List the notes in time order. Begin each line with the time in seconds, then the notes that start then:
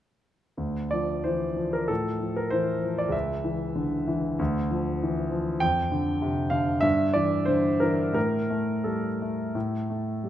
0.57 D2
0.91 F3 D5
1.24 E3 C5
1.56 F3
1.73 A#4
1.88 A2 A4
2.20 F3
2.36 A#4
2.50 E3 C5
2.83 F3
2.98 D5
3.08 C#2 E5
3.44 E3
3.75 D3
4.07 E3
4.39 D2
4.71 F3
5.03 E3
5.31 F3
5.60 F2 G5
5.92 D3
6.22 C3
6.50 D3 F5
6.81 G2 E5
7.13 E3 D5
7.45 D3 C5
7.80 E3 A#4
8.13 A2 A#4
8.50 A3
8.84 G3 A4
9.22 A3
9.55 A2
9.90 A3
10.24 G3